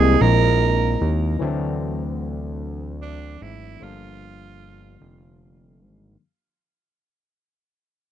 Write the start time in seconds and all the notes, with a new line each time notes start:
Already playing: C2 G#3 A#3 C4 E4 G#4 D#5
0.21 A#1 A#4
1.01 D#2
1.39 D2 E3 F#3 A3 C4
1.44 D4
3.03 D4
3.41 G#1 E4
3.79 G1 D3 F3 G3 F4
3.84 A#3 D4
5.01 F1
5.81 G#1